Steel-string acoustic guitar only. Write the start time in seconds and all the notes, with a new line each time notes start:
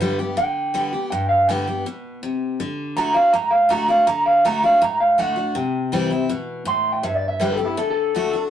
Already playing: G2
0.00 D3 G3 B3 G4
0.19 B3 G4
0.37 D3
0.74 D3 G3 B3 G4
0.93 B3 G4
1.12 G2
1.49 D3 G3 B3 G4
1.67 B3 G4
1.86 B2
2.23 C3
2.60 D3
2.97 D3 A3 D4 F#4
3.14 D4 F#4
3.34 A2
3.69 D3 A3 D4 F#4
3.88 D4 F#4
4.07 D3
4.45 D3 A3 D4 F#4
4.63 D4 F#4
4.82 A2
5.18 D3 A3 D4 F#4
5.36 D4 F#4
5.55 C3
5.92 E3 G3 C4 E4
6.11 C4 E4
6.29 B2
6.65 A2
7.03 G2
7.40 D3 G3 B3 G4
7.58 B3 G4
7.77 D3
8.15 D3 A3 D4 F#4
8.33 D4 F#4